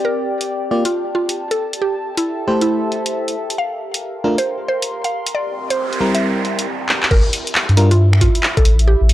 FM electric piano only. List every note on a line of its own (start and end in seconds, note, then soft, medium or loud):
0.71 0.84 A#3 medium
0.71 0.84 F4 medium
0.71 0.84 G4 medium
0.71 0.84 D5 medium
2.48 3.35 A3 medium
2.48 3.35 E4 medium
2.48 3.35 G4 medium
2.48 3.35 C5 medium
4.24 4.37 A3 medium
4.24 4.37 D4 medium
4.24 4.37 F4 medium
4.24 4.37 A#4 medium
6.01 6.67 G3 medium
6.01 6.67 C4 medium
6.01 6.67 E4 medium
6.01 6.67 A#4 medium
7.77 7.90 G3 medium
7.77 7.90 D4 medium
7.77 7.90 F4 medium
7.77 7.90 A#4 medium